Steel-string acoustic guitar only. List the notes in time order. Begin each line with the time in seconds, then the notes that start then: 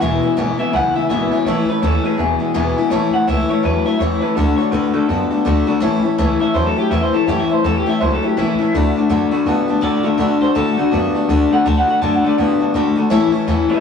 0.00 E2 B2 E3 G#3 B3 E4
0.23 E3 G#3 B3 E4
0.37 E2 B2 E3 G#3 B3 E4
0.58 E3 G#3 B3 E4
0.73 E3 G#3 B3 E4
0.95 E3 G#3 B3 E4
1.10 E2 B2 E3 G#3 B3 E4
1.31 E3 G#3 B3 E4
1.46 A2 E3 A3 C#4 E4
1.68 A3 C#4 E4
1.82 A2 E3 A3 C#4 E4
2.04 A3 C#4 E4
2.18 E3 G#3 B3 E4
2.39 E3 G#3 B3 E4
2.54 E2 B2 E3 G#3 B3 E4
2.78 E3 G#3 B3 E4
2.90 A2 E3 A3 C#4 E4
3.13 A3 C#4 E4
3.27 A2 E3 A3 C#4 E4
3.49 A3 C#4 E4
3.63 E3 A3 C#4 E4
3.85 A3 C#4 E4
4.00 A2 E3 A3 C#4 E4
4.21 A3 C#4 E4
4.37 D3 A3 D4 F#4
4.58 A3 D4 F#4
4.72 D3 A3 D4 F#4
4.94 A3 D4 F#4
5.09 D3 A3 D4 F#4
5.30 A3 D4 F#4
5.45 D3 A3 D4 F#4
5.67 A3 D4 F#4
5.80 A2 E3 A3 C#4 E4
6.02 A3 C#4 E4
6.18 A2 E3 A3 C#4 E4
6.39 A3 C#4 E4
6.54 E3 A3 C#4 E4
6.76 A3 C#4 E4
6.91 A2 E3 A3 C#4 E4
7.13 A3 C#4 E4
7.27 A2 E3 A3 C#4 E4
7.49 A3 C#4 E4
7.64 A2 E3 A3 C#4 E4
7.86 A3 C#4 E4
8.01 E3 A3 C#4 E4
8.22 A3 C#4 E4
8.37 A2 E3 A3 C#4 E4
8.58 A3 C#4 E4
8.74 D3 A3 D4 F#4
8.96 A3 D4 F#4
9.09 D3 A3 D4 F#4
9.31 A3 D4 F#4
9.46 D3 A3 D4 F#4
9.68 A3 D4 F#4
9.81 D3 A3 D4 F#4
10.03 A3 D4 F#4
10.18 D3 A3 D4 F#4
10.41 A3 D4 F#4
10.55 D3 A3 D4 F#4
10.77 A3 D4 F#4
10.91 D3 A3 D4 F#4
11.15 A3 D4 F#4
11.29 D3 A3 D4 F#4
11.51 A3 D4 F#4
11.66 D3 A3 D4 F#4
11.87 A3 D4 F#4
12.02 D3 A3 D4 F#4
12.24 A3 D4 F#4
12.38 D3 A3 D4 F#4
12.59 A3 D4 F#4
12.74 D3 A3 D4 F#4
12.95 A3 D4 F#4
13.10 A2 E3 A3 C#4 E4
13.32 A3 C#4 E4
13.48 A2 E3 A3 C#4 E4
13.69 A3 C#4 E4